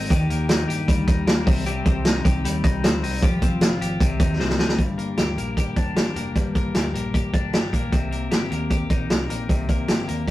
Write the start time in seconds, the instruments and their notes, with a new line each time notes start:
Already playing: clean electric guitar G#3 C4 D#4 A#4
0.10 fingered electric bass D#2, clean electric guitar D#3 G4, kick, closed hi-hat
0.30 fingered electric bass D#2, clean electric guitar A#3, closed hi-hat
0.49 clean electric guitar D#4, snare, closed hi-hat
0.68 fingered electric bass G2, clean electric guitar G4, closed hi-hat
0.88 fingered electric bass D2, clean electric guitar G3, kick, closed hi-hat
1.08 fingered electric bass D#2, clean electric guitar D#4, kick, closed hi-hat
1.27 clean electric guitar A#3, snare, closed hi-hat
1.46 fingered electric bass C2, clean electric guitar C3, kick, open hi-hat
1.66 clean electric guitar C3 G4, closed hi-hat
1.86 fingered electric bass C2, clean electric guitar C4, kick, closed hi-hat
2.05 clean electric guitar D#4, snare, closed hi-hat
2.25 fingered electric bass C2, clean electric guitar G4, kick, closed hi-hat
2.44 fingered electric bass D#2, clean electric guitar G3, closed hi-hat
2.64 fingered electric bass C2, clean electric guitar D#4, kick, closed hi-hat
2.84 fingered electric bass D2, clean electric guitar C4, snare, closed hi-hat
3.03 fingered electric bass C2, clean electric guitar D#4, open hi-hat
3.22 fingered electric bass F1, clean electric guitar F3 G4, kick, closed hi-hat
3.42 fingered electric bass F1, clean electric guitar C4, kick, closed hi-hat
3.61 clean electric guitar F4, snare, closed hi-hat
3.80 fingered electric bass G#1, clean electric guitar G4, closed hi-hat
4.00 fingered electric bass C2, clean electric guitar C3, kick, closed hi-hat
4.20 fingered electric bass D#2, clean electric guitar D#4, kick, closed hi-hat
4.39 fingered electric bass C2, clean electric guitar C4, snare
4.50 snare
4.59 fingered electric bass D2, clean electric guitar D#4, snare
4.69 snare
4.78 fingered electric bass G1, clean electric guitar G2, kick, closed hi-hat
4.98 clean electric guitar A#3, closed hi-hat
5.17 fingered electric bass D2, clean electric guitar G4, snare, closed hi-hat
5.37 fingered electric bass A#1, clean electric guitar A#3, closed hi-hat
5.57 clean electric guitar G4, kick, closed hi-hat
5.76 fingered electric bass F1, clean electric guitar D4, kick, closed hi-hat
5.96 fingered electric bass G1, clean electric guitar G4, snare, closed hi-hat
6.15 fingered electric bass F1, clean electric guitar A#3, closed hi-hat
6.36 fingered electric bass G1, clean electric guitar G2, kick, closed hi-hat
6.55 clean electric guitar A#3, kick, closed hi-hat
6.74 fingered electric bass D2, clean electric guitar G4, snare, closed hi-hat
6.94 fingered electric bass A#1, clean electric guitar A#3, closed hi-hat
7.14 clean electric guitar G4, kick, closed hi-hat
7.34 fingered electric bass F1, clean electric guitar D4, kick, closed hi-hat
7.53 fingered electric bass G1, clean electric guitar G4, snare, closed hi-hat
7.73 fingered electric bass A#1, clean electric guitar A#3, kick, closed hi-hat
7.92 fingered electric bass C2, clean electric guitar C3, kick, closed hi-hat
8.11 clean electric guitar A#3, closed hi-hat
8.31 fingered electric bass G1, clean electric guitar G4, snare, closed hi-hat
8.51 fingered electric bass D#2, clean electric guitar A#3, closed hi-hat
8.70 clean electric guitar G4, kick, closed hi-hat
8.90 fingered electric bass A#1, clean electric guitar D#4, kick, closed hi-hat
9.10 fingered electric bass C2, clean electric guitar G4, snare, closed hi-hat
9.30 fingered electric bass A#1, clean electric guitar A#3, closed hi-hat
9.49 fingered electric bass C2, clean electric guitar C3, kick, closed hi-hat
9.69 clean electric guitar A#3, kick, closed hi-hat
9.88 fingered electric bass G1, clean electric guitar G4, snare, closed hi-hat
10.08 fingered electric bass D#2, clean electric guitar A#3, closed hi-hat